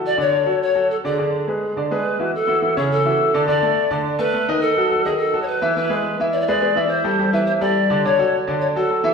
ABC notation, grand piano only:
X:1
M:4/4
L:1/8
Q:1/4=210
K:Dlyd
V:1 name="Grand piano"
[F,FA] [D,Dd]2 [F,FA]2 [F,FA]2 [D,Dd] | [D,Dd]2 [G,GB]2 [D,Dd] [G,GB]2 [E,EF] | z [E,EF] [E,EF] [C,Cc]2 [E,EF]2 [D,Dd] | [D,Dd] [A,A]2 [D,Dd]2 [A,A] [A,A] [^D,^D^d]- |
[^D,^D^d] [F,FA] [F,FA] [D,Dd]2 [F,FA]2 [E,Ee] | [E,Ee] [G,GB]2 [E,Ee]2 [G,GB] [G,GB] [E,Ee]- | [E,Ee] [=G,=GA] [G,GA] [E,Ee]2 [G,GA]2 [D,Dd] | [D,Dd] [F,FA]2 [D,Dd]2 [F,FA] [F,FA] [E,Ee] |]